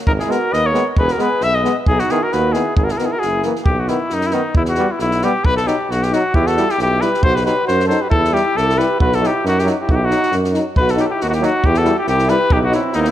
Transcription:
0.06 G#1 D#4 A#4, kick
0.20 E4 G#4, snare
0.27 G#3 B3 F#4 A#4, snare
0.52 D#2 B4 D#5, snare
0.65 A#4 C#5
0.73 G#3 B3, snare
0.97 E1 G#4 B4, kick
1.08 F#4, snare
1.12 A#4
1.18 G#3 B3 G#4 B4, snare
1.41 B1 B4 E5, snare
1.55 B4 D#5
1.64 G#3 B3, snare
1.86 B1 D#4 G#4, kick
1.99 D#4 F#4, snare
2.09 D#3 B3 E4 G#4, snare
2.22 F#4 A#4
2.32 D#2 F#4 B4, snare
2.53 D#3 B3 E4 G#4, snare
2.76 G#1 D#4 G#4, kick
2.84 F#4 A#4
2.89 E4 G#4, snare
2.98 D#3 B3 F#4 A#4, snare
3.05 E4 G#4
3.12 F#4 A#4
3.19 F#1 G#4, snare
3.27 E4
3.43 E3 A#3, snare
3.56 snare
3.65 B1 G4, kick
3.79 F#4
3.88 D#3 B3 E4, snare
4.10 F#2 D#4, snare
4.21 snare
4.26 E4
4.31 D#3 B3 D#4, snare
4.55 E2 E4, kick
4.65 F#4, snare
4.75 G3 B3, snare
4.92 E4
4.99 B1 E4, snare
5.11 snare
5.22 G3 B3 G4, snare
5.45 B1 B4, kick
5.57 A4, snare
5.66 F#3 D#4 G4, snare
5.90 B1 F#4, snare
6.03 G4, snare
6.12 F#3 D#4 F#4, snare
6.34 E2 E4 G4, kick
6.47 F#4 A4, snare
6.57 G3 E4, snare
6.69 E4 G4, snare
6.78 B1 E4 G4, snare
7.00 G3 E4 G4 B4, snare
7.14 snare
7.22 B1 F#4 C5, kick
7.35 G4 B4, snare
7.44 F#3 D#4 G4 B4, snare
7.64 F#4 C5, snare
7.69 F#2
7.80 snare
7.86 F#3 A4 C5
7.90 D#4, snare
8.02 G4 B4
8.09 E2 E4 A4, kick
8.25 snare
8.31 G3 E4 G4
8.35 snare
8.56 C2 E4 A4, snare
8.69 snare
8.76 G3 E4 B4, snare
8.81 G4
8.99 B1 F#4 B4, kick
9.12 F#4 A4, snare
9.20 F#3 D#4, snare
9.25 E4 G4
9.45 F#2 D#4 F#4, snare
9.59 E4 G4, snare
9.64 F#3 D#4, snare
9.81 E4 G4
9.89 B1 D#4 F#4, kick
9.95 E4 G4
10.04 D#4 F#4
10.10 F#3 D#4, snare
10.22 snare
10.32 F#2, snare
10.44 snare
10.53 F#3 D#4, snare
10.76 B1 B4, kick
10.81 F#4
10.88 F#4 A4, snare
10.96 F#3 D#4 G4, snare
11.03 E4 F#4 A4
11.10 E4 G4
11.21 D#2 C4 D#4 F#4, snare
11.28 D#4 F#4
11.32 G4, snare
11.37 F#3 E4
11.42 D#4 F#4, snare
11.64 E2 E4 G4, kick
11.74 A4, snare
11.80 F#4
11.84 G3 E4, snare
11.99 E4 G4
12.07 C2 G4, snare
12.11 E4
12.19 snare
12.28 G3 E4 B4, snare
12.32 G4
12.50 B1 D#4 G4, kick
12.60 E4 F#4 G4
12.65 D#4
12.71 F#3 E4, snare
12.76 C4
12.93 D#2 B3 D#4, snare
12.97 C4 D#4 E4
13.02 B3 E4, snare
13.08 C4

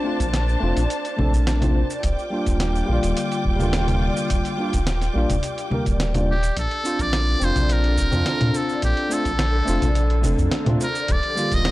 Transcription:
Already playing: D4 A4 C5 D5 A5
0.04 A3 C4 D4 F4
0.20 A#1 A#4, kick, closed hi-hat, cabasa
0.34 snare, closed hi-hat, cabasa
0.49 cabasa
0.60 F1 A3 C4 D4 F4 C5
0.77 A#1 D5, closed hi-hat, cabasa
0.90 A4, closed hi-hat, cabasa
1.05 closed hi-hat, cabasa
1.17 A#1 A3 C4 D4 A4, low conga
1.33 A#4, kick, cabasa
1.47 snare, closed hi-hat, cabasa
1.60 A3 C4 D4 F4, closed hi-hat, low conga, cabasa
1.75 C5
1.90 D5, cabasa
2.03 D#1 F4 G4 G5 D6, kick, closed hi-hat, cabasa
2.19 cabasa
2.30 G3 A#3 D4 F4
2.46 D#1 A#4, kick, closed hi-hat, cabasa
2.60 snare, closed hi-hat, cabasa
2.75 cabasa
2.85 A#1 G3 A#3 D5
2.90 D3 F4
3.03 D#1 D#5, closed hi-hat, cabasa
3.16 G4, closed hi-hat, cabasa
3.32 closed hi-hat, cabasa
3.45 D#1, kick
3.56 G3 A#3 A#4, low conga
3.60 D3 F4, cabasa
3.73 snare, closed hi-hat, cabasa
3.88 closed hi-hat, low conga, cabasa
4.02 D5
4.16 D#5, cabasa
4.30 D#1 G4, kick, closed hi-hat, cabasa
4.45 closed hi-hat, cabasa
4.57 G3 A#3 D4 F4
4.73 D#1 A#4, kick, closed hi-hat, cabasa
4.87 snare, closed hi-hat, cabasa
5.02 snare, closed hi-hat, cabasa
5.14 A#1 G3 A#3 D4 F4 D5
5.29 D#1 D#5, kick, closed hi-hat, low conga, cabasa
5.43 G4, closed hi-hat, cabasa
5.58 closed hi-hat, cabasa
5.70 D3 G3 A#3 A#4, low conga
5.86 D#1 D5, kick, closed hi-hat, cabasa
6.00 G5, snare, closed hi-hat, cabasa
6.13 G3 A#3 D4 F4 D5, closed hi-hat, low conga, cabasa
6.28 G4
6.43 closed hi-hat, cabasa
6.56 A#1 D3 A4, kick, closed hi-hat, cabasa
6.71 closed hi-hat
6.84 C4 D4 F4, cabasa
6.99 A#1 A#4 D5, kick, closed hi-hat, cabasa
7.13 snare, closed hi-hat, cabasa
7.40 F1 C4 D4 C5, cabasa
7.44 F4 C5
7.56 A#1 D5, closed hi-hat, low conga, cabasa
7.69 A4 A#4, closed hi-hat, cabasa
7.84 closed hi-hat
7.98 F1, kick, cabasa
8.11 F2 C4 D4 A#4, low conga, cabasa
8.16 F4
8.26 snare, closed hi-hat, cabasa
8.41 A#2, closed hi-hat, low conga
8.54 A4 C5, cabasa
8.69 D5, cabasa
8.82 A#1 G4 A4, kick, closed hi-hat, cabasa
8.97 closed hi-hat
9.09 A3 C4 D4 F4 A4, cabasa
9.25 A#1, kick, closed hi-hat, cabasa
9.39 snare, closed hi-hat, cabasa
9.65 F1 A3 C4 D4 F4 C5, cabasa
9.82 A#1 D5, closed hi-hat, low conga, cabasa
9.95 A4, closed hi-hat, cabasa
10.10 closed hi-hat
10.22 F1 A3 C4 D4 A4, low conga, cabasa
10.39 F2 A#4, kick, cabasa
10.51 snare, closed hi-hat, cabasa
10.65 A#2 A3 C4 D4 F4, closed hi-hat, low conga
10.81 A#4 C5, cabasa
10.95 D5, cabasa
11.08 D#1 F3 F4 G4 D5, kick, closed hi-hat, cabasa
11.23 closed hi-hat
11.35 D3 G3 A#3 F4, cabasa
11.52 D#1 A#4 D#5, kick, closed hi-hat, cabasa
11.65 snare, closed hi-hat, cabasa

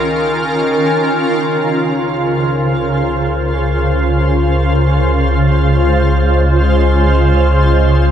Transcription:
Already playing: C#2 C#3 D#3 C#4 F4 A#4
0.94 C#2 C#3
1.52 C5
4.66 G#3

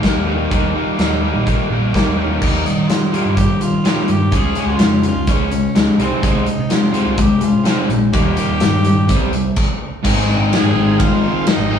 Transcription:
0.02 D#3 G3 A#3 D#4, kick, snare, closed hi-hat
0.07 G4
0.15 D#2
0.25 D#3 G3 A#3 D#4 G4
0.30 A#3
0.50 D#2 D#3 G3 A#3 D#4 G4, kick, closed hi-hat
0.74 D#3 G3 A#3 D#4
0.98 D#2 D#3 G3 A#3 D#4 G4, snare, closed hi-hat
1.21 D#3 G3 A#3 D#4 G4
1.34 A#1
1.46 D#3 G3 A#3 D#4 G4, kick, closed hi-hat
1.70 A#1 D#3 G3 A#3 D#4
1.93 D#3 G3 A#3 D#4, kick, snare, closed hi-hat
2.07 D#2
2.17 D#3 G3 A#3 C#4 D#4 G4
2.40 D#2 D#3 G3 A#3 D#4 G4, kick, crash
2.65 D#3 G3, closed hi-hat
2.78 D#3
2.88 D#3 G3 A#3 D#4 F4 G4, snare, closed hi-hat
3.12 D#3 G3 A#3 D#4 G4, closed hi-hat
3.25 G2
3.35 D#3 G3 A#3 D#4 G4, kick, closed hi-hat
3.40 G4
3.60 D#3 G3 D#4 F4 G4, closed hi-hat
3.65 A#3
3.73 D#3
3.84 D#3 G3 A#3, snare, closed hi-hat
3.88 D#4 G4
4.08 G2 D#3 G3 G4, closed hi-hat
4.31 C#2 C#3 F3 G#3 C#4 F4, kick, closed hi-hat
4.36 G#4
4.55 C#3 G#3 C#4, closed hi-hat
4.60 F4
4.66 C#2
4.77 F2 C#3 F3 G#3, snare, closed hi-hat
4.81 C#4 F4
5.03 C#3 G#3 C#4 F4, closed hi-hat
5.08 G#3 F4
5.15 C#2
5.27 C#3 F3 G#3 C#4 F4, kick, closed hi-hat
5.31 C#4
5.51 C#3 G#3 C#4 F4, closed hi-hat
5.56 G#3
5.75 C#2 C#3 F3 G#3 C#4 F4, snare, closed hi-hat
5.98 C2 C3 D#3 G#3 C4 G#4, closed hi-hat
6.03 C4
6.23 C2 C3 G#3 C4, kick, closed hi-hat
6.28 D#4
6.46 C3 G#3, closed hi-hat
6.59 C3
6.70 C3 G#3 C4 F4, snare, closed hi-hat
6.74 G#4
6.92 C3 G#3 C4 G#4, closed hi-hat
6.97 G#3
7.06 C2
7.17 C3 D#3 G#3 C4, kick, closed hi-hat
7.21 G4 G#4
7.40 C3 G#3 C4 F4 G#4, closed hi-hat
7.55 C3
7.65 C3 G#3 C4, snare, closed hi-hat
7.89 A#1 C3 G#3, closed hi-hat
8.12 D#2 D#3 G3 A#3 D#4 G4, kick, closed hi-hat
8.37 D#3 G3 A#3, closed hi-hat
8.48 D#2
8.60 G2 D#3 G3 A#3, snare, closed hi-hat
8.64 D#4 G4
8.84 D#3 G3 D#4 G4, closed hi-hat
8.89 A#3
8.97 G2
9.09 C2 C3 G3 C4 E4 G4, kick, closed hi-hat
9.33 C3 G3 C4 E4 G4, closed hi-hat
9.56 kick, crash
10.03 G#1 G#2 D#3 G#3 C4 D#4, kick, crash
10.07 C4 D#4 G#4
10.27 G#2 D#3 G#3 C4 D#4 G#4
10.38 G#1
10.50 G#2 D#3 G#3 C4 D#4 G#4 G#5, snare, ride bell
10.63 G#2
10.74 G#1 C4 D#4 G#4
10.78 G#3
10.97 G#3 C4 D#4 F4 G#4 F5, kick, ride bell
11.22 G#3 C4 D#4 G#4
11.27 G#3
11.47 G#2 D#3 G#3 C4 D#4 D#5, snare, ride bell
11.58 G#1
11.70 D#3 G#3 C4 D#4 G#4
11.74 G#2 G#3

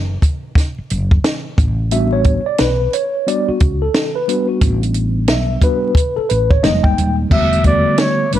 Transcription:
Already playing: F#1
0.22 kick, closed hi-hat
0.55 kick, snare, closed hi-hat
0.78 muted fretless electric bass stroke
0.90 F#1, closed hi-hat
1.11 kick
1.24 snare, closed hi-hat
1.58 A1, kick, closed hi-hat
1.91 G3 B3 D4 F#4 E5, closed hi-hat
2.13 C#5
2.24 kick, closed hi-hat
2.46 D5
2.58 B1 B4, snare, closed hi-hat
2.93 C#5, closed hi-hat
3.26 G3 B3 D4 F#4 D5, closed hi-hat
3.48 F#4, muted fretless electric bass stroke
3.60 C#2, kick, closed hi-hat
3.82 A4
3.94 snare, closed hi-hat
4.15 B4
4.28 G3 B3 D4 F#4, closed hi-hat
4.49 F#4
4.61 A1, kick, closed hi-hat
4.83 closed hi-hat
4.94 closed hi-hat
5.28 B1 E5, snare, closed hi-hat
5.62 G3 B3 D4 F#4 B4, kick, closed hi-hat
5.95 kick, closed hi-hat
6.16 A4, muted fretless electric bass stroke
6.29 A1 B4, closed hi-hat
6.50 C#5, kick
6.63 F1 G3 G#3 A#3 D#4 D#5, snare, closed hi-hat
6.83 G1 G5, kick
6.98 D#1, closed hi-hat
7.29 E1 D3 G3 A3 B3 F#4 E5, kick, crash
7.53 closed hi-hat
7.63 D3 G3 A3 B3 F#4 D5, kick, closed hi-hat
7.98 C#5, snare, closed hi-hat
8.31 G1 D3 G3 A3 B3 D4 B4, closed hi-hat

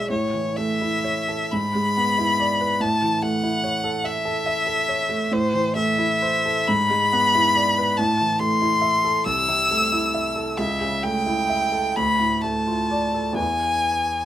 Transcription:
Already playing: G#3 E4 G#4 D5 E5
0.10 A2 C#5
0.34 E3
0.57 A3 E5
0.81 E4
1.04 C#5
1.28 A4
1.52 G#2 B5
1.75 G#3
1.97 B3
2.18 E4
2.40 D5
2.61 B4
2.80 A2 A5
3.02 E3
3.23 A3 F#5
3.43 E4
3.64 C#5
3.84 A4
4.04 E5
4.25 A4
4.46 E5
4.67 A4
4.89 C#5
5.09 A3
5.31 A2 C5
5.54 E3
5.75 A3 E5
5.98 E4
6.22 C5
6.46 A4
6.68 G#2 B5
6.90 G#3
7.13 B3
7.35 E4
7.56 D5
7.78 B4
7.97 A2 A5
8.21 E3
8.39 A3 C6
8.62 E4
8.81 E5
9.04 A4
9.26 C2 E6
9.49 C3
9.71 A3
9.92 E4
10.14 E5
10.36 A4
10.58 C#2 E5
10.81 C#3
11.03 A3 G5
11.26 E4
11.50 E5
11.72 A4
11.96 D2 B5
12.19 A2
12.41 A3 A5
12.67 F4
12.91 D5
13.14 A4
13.33 E2 B3 E4 B4
13.37 G#5

